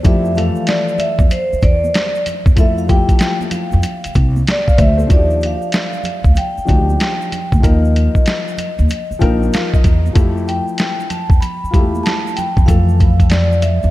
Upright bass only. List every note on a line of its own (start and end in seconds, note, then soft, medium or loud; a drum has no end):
0.05 0.48 F2 loud
1.19 1.29 E2 medium
1.53 muted upright bass stroke soft
1.63 1.89 E2 loud
2.46 2.55 E2 medium
2.57 3.01 F2 medium
3.73 3.82 F2 medium
4.05 muted upright bass stroke soft
4.16 4.41 C2 loud
4.79 5.05 D2 medium
5.10 5.53 D#2 loud
6.25 6.34 D2 medium
6.58 muted upright bass stroke soft
6.69 6.95 D2 medium
7.53 7.61 D2 medium
7.64 8.06 D#2 medium
8.79 8.87 D#2 medium
9.11 muted upright bass stroke soft
9.22 9.47 A#1 medium
9.85 10.11 E2 medium
10.16 10.59 F2 loud
11.30 11.39 E2 medium
11.63 muted upright bass stroke soft
11.74 12.00 E2 medium
12.57 12.66 E2 medium
12.68 13.79 F2 medium
13.84 13.91 F2 medium